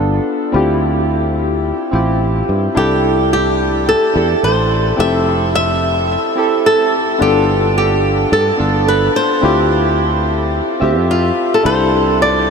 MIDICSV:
0, 0, Header, 1, 4, 480
1, 0, Start_track
1, 0, Key_signature, 0, "major"
1, 0, Tempo, 555556
1, 469, Time_signature, 4, 2, 24, 8
1, 10801, End_track
2, 0, Start_track
2, 0, Title_t, "Nylon-string guitar"
2, 0, Program_c, 0, 24
2, 2396, Note_on_c, 0, 67, 88
2, 2868, Note_off_c, 0, 67, 0
2, 2878, Note_on_c, 0, 67, 81
2, 3355, Note_off_c, 0, 67, 0
2, 3358, Note_on_c, 0, 69, 83
2, 3834, Note_off_c, 0, 69, 0
2, 3837, Note_on_c, 0, 72, 93
2, 4316, Note_off_c, 0, 72, 0
2, 4320, Note_on_c, 0, 76, 101
2, 4788, Note_off_c, 0, 76, 0
2, 4799, Note_on_c, 0, 76, 97
2, 5753, Note_off_c, 0, 76, 0
2, 5757, Note_on_c, 0, 69, 87
2, 6237, Note_on_c, 0, 67, 94
2, 6247, Note_off_c, 0, 69, 0
2, 6709, Note_off_c, 0, 67, 0
2, 6719, Note_on_c, 0, 67, 84
2, 7196, Note_on_c, 0, 69, 91
2, 7208, Note_off_c, 0, 67, 0
2, 7672, Note_off_c, 0, 69, 0
2, 7676, Note_on_c, 0, 71, 84
2, 7912, Note_off_c, 0, 71, 0
2, 7916, Note_on_c, 0, 72, 87
2, 9558, Note_off_c, 0, 72, 0
2, 9597, Note_on_c, 0, 65, 77
2, 9973, Note_on_c, 0, 69, 73
2, 9981, Note_off_c, 0, 65, 0
2, 10071, Note_off_c, 0, 69, 0
2, 10074, Note_on_c, 0, 72, 93
2, 10518, Note_off_c, 0, 72, 0
2, 10558, Note_on_c, 0, 74, 83
2, 10801, Note_off_c, 0, 74, 0
2, 10801, End_track
3, 0, Start_track
3, 0, Title_t, "Synth keys"
3, 0, Program_c, 1, 88
3, 0, Control_c, 1, 64, 127
3, 0, Note_on_c, 1, 59, 80
3, 0, Note_on_c, 1, 62, 74
3, 0, Note_on_c, 1, 65, 70
3, 0, Note_on_c, 1, 69, 85
3, 434, Note_off_c, 1, 59, 0
3, 440, Note_off_c, 1, 62, 0
3, 444, Note_off_c, 1, 65, 0
3, 450, Note_off_c, 1, 69, 0
3, 450, Note_on_c, 1, 60, 89
3, 460, Note_on_c, 1, 64, 81
3, 470, Note_on_c, 1, 65, 80
3, 479, Control_c, 1, 64, 0
3, 482, Note_on_c, 1, 67, 94
3, 629, Control_c, 1, 64, 127
3, 1635, Note_off_c, 1, 60, 0
3, 1640, Note_off_c, 1, 64, 0
3, 1645, Note_off_c, 1, 65, 0
3, 1651, Note_off_c, 1, 67, 0
3, 1653, Note_on_c, 1, 60, 78
3, 1665, Note_on_c, 1, 64, 73
3, 1675, Note_on_c, 1, 65, 68
3, 1685, Note_on_c, 1, 67, 89
3, 2356, Note_off_c, 1, 60, 0
3, 2362, Note_off_c, 1, 64, 0
3, 2367, Note_off_c, 1, 65, 0
3, 2372, Note_off_c, 1, 67, 0
3, 2374, Note_on_c, 1, 62, 88
3, 2386, Note_on_c, 1, 64, 84
3, 2396, Note_on_c, 1, 67, 78
3, 2402, Control_c, 1, 64, 0
3, 2406, Note_on_c, 1, 69, 94
3, 2525, Control_c, 1, 64, 127
3, 3557, Note_off_c, 1, 62, 0
3, 3562, Note_off_c, 1, 64, 0
3, 3567, Note_off_c, 1, 67, 0
3, 3573, Note_off_c, 1, 69, 0
3, 3573, Note_on_c, 1, 62, 81
3, 3584, Note_on_c, 1, 64, 70
3, 3594, Note_on_c, 1, 67, 73
3, 3604, Note_on_c, 1, 69, 86
3, 4276, Note_off_c, 1, 62, 0
3, 4281, Note_off_c, 1, 64, 0
3, 4287, Note_off_c, 1, 67, 0
3, 4291, Note_on_c, 1, 60, 86
3, 4292, Note_off_c, 1, 69, 0
3, 4300, Note_on_c, 1, 64, 79
3, 4312, Note_on_c, 1, 67, 82
3, 4322, Control_c, 1, 64, 0
3, 4322, Note_on_c, 1, 69, 97
3, 4458, Control_c, 1, 64, 127
3, 5475, Note_off_c, 1, 60, 0
3, 5480, Note_off_c, 1, 64, 0
3, 5486, Note_off_c, 1, 67, 0
3, 5491, Note_off_c, 1, 69, 0
3, 5491, Note_on_c, 1, 60, 78
3, 5499, Note_on_c, 1, 64, 76
3, 5511, Note_on_c, 1, 67, 75
3, 5521, Note_on_c, 1, 69, 90
3, 6195, Note_off_c, 1, 60, 0
3, 6199, Note_off_c, 1, 64, 0
3, 6205, Note_off_c, 1, 67, 0
3, 6209, Note_on_c, 1, 59, 91
3, 6210, Note_off_c, 1, 69, 0
3, 6219, Note_on_c, 1, 62, 82
3, 6228, Note_on_c, 1, 65, 83
3, 6240, Control_c, 1, 64, 0
3, 6240, Note_on_c, 1, 69, 99
3, 6385, Control_c, 1, 64, 127
3, 7394, Note_off_c, 1, 59, 0
3, 7399, Note_off_c, 1, 62, 0
3, 7404, Note_off_c, 1, 65, 0
3, 7407, Note_on_c, 1, 59, 86
3, 7409, Note_off_c, 1, 69, 0
3, 7417, Note_on_c, 1, 62, 76
3, 7428, Note_on_c, 1, 65, 73
3, 7437, Note_on_c, 1, 69, 91
3, 8113, Note_off_c, 1, 59, 0
3, 8118, Note_off_c, 1, 62, 0
3, 8124, Note_off_c, 1, 65, 0
3, 8128, Note_off_c, 1, 69, 0
3, 8133, Note_on_c, 1, 60, 90
3, 8141, Note_on_c, 1, 64, 79
3, 8152, Note_on_c, 1, 65, 89
3, 8161, Control_c, 1, 64, 0
3, 8162, Note_on_c, 1, 67, 105
3, 8317, Control_c, 1, 64, 127
3, 9316, Note_off_c, 1, 60, 0
3, 9320, Note_off_c, 1, 64, 0
3, 9326, Note_off_c, 1, 65, 0
3, 9330, Note_on_c, 1, 60, 85
3, 9331, Note_off_c, 1, 67, 0
3, 9339, Note_on_c, 1, 76, 75
3, 9350, Note_on_c, 1, 65, 76
3, 9359, Note_on_c, 1, 67, 91
3, 10035, Note_off_c, 1, 60, 0
3, 10039, Note_off_c, 1, 76, 0
3, 10045, Note_off_c, 1, 65, 0
3, 10049, Note_off_c, 1, 67, 0
3, 10050, Note_on_c, 1, 62, 93
3, 10062, Note_on_c, 1, 64, 84
3, 10071, Note_on_c, 1, 67, 81
3, 10080, Note_on_c, 1, 69, 105
3, 10081, Control_c, 1, 64, 0
3, 10247, Control_c, 1, 64, 127
3, 10801, Note_off_c, 1, 62, 0
3, 10801, Note_off_c, 1, 64, 0
3, 10801, Note_off_c, 1, 67, 0
3, 10801, Note_off_c, 1, 69, 0
3, 10801, End_track
4, 0, Start_track
4, 0, Title_t, "Fretless electric bass"
4, 0, Program_c, 2, 35
4, 0, Note_on_c, 2, 31, 86
4, 163, Note_off_c, 2, 31, 0
4, 468, Note_on_c, 2, 38, 86
4, 1479, Note_off_c, 2, 38, 0
4, 1668, Note_on_c, 2, 33, 84
4, 2083, Note_off_c, 2, 33, 0
4, 2151, Note_on_c, 2, 43, 71
4, 2308, Note_off_c, 2, 43, 0
4, 2391, Note_on_c, 2, 36, 92
4, 3400, Note_off_c, 2, 36, 0
4, 3591, Note_on_c, 2, 40, 94
4, 3748, Note_off_c, 2, 40, 0
4, 3830, Note_on_c, 2, 33, 73
4, 4244, Note_off_c, 2, 33, 0
4, 4311, Note_on_c, 2, 29, 91
4, 5320, Note_off_c, 2, 29, 0
4, 6231, Note_on_c, 2, 31, 94
4, 7125, Note_off_c, 2, 31, 0
4, 7190, Note_on_c, 2, 43, 93
4, 7348, Note_off_c, 2, 43, 0
4, 7430, Note_on_c, 2, 31, 94
4, 7844, Note_off_c, 2, 31, 0
4, 8148, Note_on_c, 2, 38, 92
4, 9159, Note_off_c, 2, 38, 0
4, 9346, Note_on_c, 2, 38, 93
4, 9482, Note_off_c, 2, 38, 0
4, 9482, Note_on_c, 2, 41, 98
4, 9762, Note_off_c, 2, 41, 0
4, 10066, Note_on_c, 2, 36, 94
4, 10801, Note_off_c, 2, 36, 0
4, 10801, End_track
0, 0, End_of_file